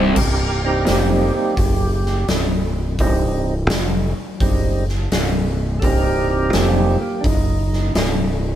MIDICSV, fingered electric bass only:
0, 0, Header, 1, 3, 480
1, 0, Start_track
1, 0, Key_signature, -3, "minor"
1, 0, Tempo, 708383
1, 115, Time_signature, 4, 2, 24, 8
1, 5797, End_track
2, 0, Start_track
2, 0, Title_t, "Fingered electric bass"
2, 0, Program_c, 0, 33
2, 0, Note_on_c, 0, 24, 94
2, 84, Note_off_c, 0, 24, 0
2, 112, Note_on_c, 0, 24, 84
2, 565, Note_off_c, 0, 24, 0
2, 598, Note_on_c, 0, 29, 81
2, 896, Note_off_c, 0, 29, 0
2, 1070, Note_on_c, 0, 30, 84
2, 1523, Note_off_c, 0, 30, 0
2, 1548, Note_on_c, 0, 24, 87
2, 2002, Note_off_c, 0, 24, 0
2, 2028, Note_on_c, 0, 24, 91
2, 2481, Note_off_c, 0, 24, 0
2, 2509, Note_on_c, 0, 29, 91
2, 2810, Note_off_c, 0, 29, 0
2, 2991, Note_on_c, 0, 30, 84
2, 3443, Note_off_c, 0, 30, 0
2, 3468, Note_on_c, 0, 24, 84
2, 3922, Note_off_c, 0, 24, 0
2, 3948, Note_on_c, 0, 24, 85
2, 4402, Note_off_c, 0, 24, 0
2, 4428, Note_on_c, 0, 29, 91
2, 4729, Note_off_c, 0, 29, 0
2, 4912, Note_on_c, 0, 30, 91
2, 5364, Note_off_c, 0, 30, 0
2, 5386, Note_on_c, 0, 24, 89
2, 5797, Note_off_c, 0, 24, 0
2, 5797, End_track
3, 0, Start_track
3, 0, Title_t, "Muted fingered electric bass strokes"
3, 920, Note_on_c, 9, 29, 40
3, 988, Note_off_c, 9, 29, 0
3, 2831, Note_on_c, 9, 29, 37
3, 2898, Note_off_c, 9, 29, 0
3, 4749, Note_on_c, 9, 29, 40
3, 4817, Note_off_c, 9, 29, 0
3, 5797, End_track
0, 0, End_of_file